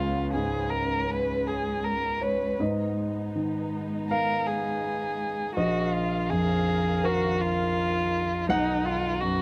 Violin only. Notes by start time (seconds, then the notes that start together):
Already playing: F4
0.33 G#4
0.70 A#4
1.10 B4
1.47 G#4
1.84 A#4
2.22 B4
4.11 A#4
4.47 G#4
5.55 F#4
5.94 F4
6.30 G#4
7.05 F#4
7.41 F4
8.50 D#4
8.85 F4
9.21 F#4